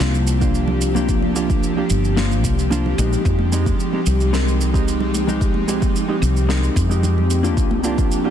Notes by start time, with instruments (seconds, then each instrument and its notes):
Already playing: analog synth pad F3 A#3 C4 D4 G4
0.00 fretless electric bass C2, hollow-body jazz guitar A#3 D4 F4 C5, snare, shaker
0.15 shaker
0.27 shaker
0.41 hollow-body jazz guitar A#3 D4 F4 G4, kick, shaker
0.55 shaker
0.68 low conga
0.81 high conga, shaker
0.95 hollow-body jazz guitar A#3 D4 F4 G4, low conga, shaker
1.09 kick, shaker
1.22 high conga
1.35 hollow-body jazz guitar A#3 D4 F4 G4, shaker
1.50 kick, high conga, shaker
1.63 shaker
1.77 hollow-body jazz guitar A#3 D4 F4 G4
1.90 fretless electric bass G1, shaker
2.04 shaker
2.16 hollow-body jazz guitar A#3 D4 F4 C5, snare, shaker
2.32 shaker
2.44 fretless electric bass C2, kick, shaker
2.59 shaker
2.70 hollow-body jazz guitar A#3 D4 F4 C5, low conga, shaker
2.86 low conga
2.98 fretless electric bass A#1, hollow-body jazz guitar G#3 C4 D#4 G4, high conga, shaker
3.13 shaker
3.25 fretless electric bass F2, analog synth pad G#3 C4 D#4, kick, shaker
3.39 high conga
3.52 hollow-body jazz guitar G#3 C4 D#4 G4, shaker
3.66 kick, high conga, shaker
3.80 shaker
3.93 hollow-body jazz guitar G#3 C4 D#4 G4
4.06 fretless electric bass C2, shaker
4.20 shaker
4.33 hollow-body jazz guitar G#3 C4 D#4 A#4, snare, shaker
4.48 shaker
4.61 shaker
4.73 hollow-body jazz guitar G#3 C4 D#4 G4, kick, shaker
4.88 shaker
5.00 low conga
5.14 high conga, shaker
5.27 hollow-body jazz guitar G#3 C4 D#4 G4, low conga, shaker
5.41 kick, shaker
5.54 high conga
5.68 hollow-body jazz guitar G#3 C4 D#4 G4, shaker
5.82 kick, high conga, shaker
5.96 shaker
6.08 hollow-body jazz guitar G#3 C4 D#4 G4
6.22 fretless electric bass C2, shaker
6.37 shaker
6.49 hollow-body jazz guitar G#3 C4 D#4 A#4, snare, shaker
6.64 shaker
6.76 fretless electric bass F2, kick, shaker
6.89 hollow-body jazz guitar G#3 C4 D#4 G4, shaker
7.03 low conga, shaker
7.18 low conga
7.30 high conga, shaker
7.43 hollow-body jazz guitar A#3 D4 F4 G4, shaker
7.56 fretless electric bass C2, analog synth pad F3 A#3 D4 G4, kick, shaker
7.71 high conga
7.83 hollow-body jazz guitar A#3 D4 F4 G4, shaker
7.98 kick, high conga, shaker
8.11 shaker
8.24 hollow-body jazz guitar A#3 D4 F4 G4